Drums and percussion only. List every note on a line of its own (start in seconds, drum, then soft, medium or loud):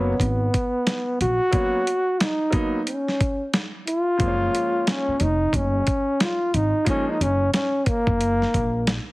0.20 kick medium
0.20 closed hi-hat medium
0.54 kick medium
0.54 closed hi-hat medium
0.87 snare loud
0.87 closed hi-hat medium
1.21 closed hi-hat medium
1.53 kick loud
1.53 closed hi-hat medium
1.87 closed hi-hat medium
2.20 snare loud
2.20 closed hi-hat medium
2.52 kick medium
2.52 closed hi-hat medium
2.87 closed hi-hat loud
3.08 snare soft
3.21 kick medium
3.21 closed hi-hat medium
3.54 snare loud
3.54 closed hi-hat medium
3.87 closed hi-hat medium
4.20 kick loud
4.20 closed hi-hat medium
4.55 closed hi-hat medium
4.87 snare loud
4.87 closed hi-hat medium
5.20 closed hi-hat medium
5.53 kick medium
5.53 closed hi-hat medium
5.87 kick medium
5.87 closed hi-hat medium
6.20 snare loud
6.20 closed hi-hat medium
6.54 closed hi-hat medium
6.86 kick medium
6.86 closed hi-hat medium
7.21 closed hi-hat medium
7.54 snare loud
7.54 closed hi-hat loud
7.86 kick medium
7.86 closed hi-hat medium
8.07 kick loud
8.21 closed hi-hat medium
8.42 snare soft
8.54 kick medium
8.54 closed hi-hat medium
8.87 snare loud
8.87 closed hi-hat medium